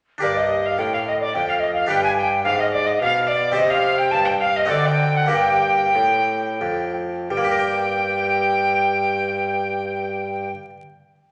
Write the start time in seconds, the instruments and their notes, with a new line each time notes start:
0.18 harpsichord D4 G4 A#4
0.23 harpsichord G2, bassoon G2, recorder D5, violin D5
0.37 recorder D#5, violin D#5
0.66 violin F5, recorder F5
0.78 bassoon A2, harpsichord A2, recorder G5, violin G5
0.94 violin F5, recorder F5
1.07 recorder D#5, violin D#5
1.20 recorder D5, violin D5
1.34 bassoon F2, harpsichord F2, recorder G5, violin G5
1.48 recorder F5, violin F5
1.60 recorder D#5, violin D#5
1.74 recorder F5, violin F5
1.87 harpsichord D4 G4 B4, recorder G5, violin G5
1.91 harpsichord G2, bassoon G2
2.03 recorder G#5, violin G#5
2.17 recorder G5, violin G5
2.43 bassoon G#2, harpsichord G#2, recorder F5, violin F5
2.59 recorder D#5, violin D#5
2.73 violin D5, recorder D5
2.86 recorder D#5, violin D#5
3.01 bassoon B2, harpsichord B2, recorder F5, violin F5
3.28 recorder D5, violin D5
3.52 harpsichord C4 G4 C5, violin D#5
3.56 harpsichord C3, bassoon C3, recorder D#5
3.70 violin F5, recorder F5
3.98 violin G5, recorder G5
4.11 harpsichord G2, bassoon G2, recorder A5, violin A5
4.25 violin G5, recorder G5
4.41 violin F5, recorder F5
4.56 violin D#5, recorder D#5
4.65 harpsichord C4 F#4 A4
4.69 harpsichord D3, bassoon D3, recorder D5, violin D5
4.86 recorder G5, violin G5
5.17 violin F#5, recorder F#5
5.26 harpsichord A#3 G4 A#4
5.31 bassoon G2, harpsichord G2, recorder G5, violin G5
5.95 bassoon A2, harpsichord A2
6.61 bassoon F2, harpsichord F2
7.30 bassoon G2, harpsichord G3, recorder G5, violin G5
7.37 harpsichord A#3
7.44 harpsichord G4
7.52 harpsichord A#4
7.59 harpsichord G5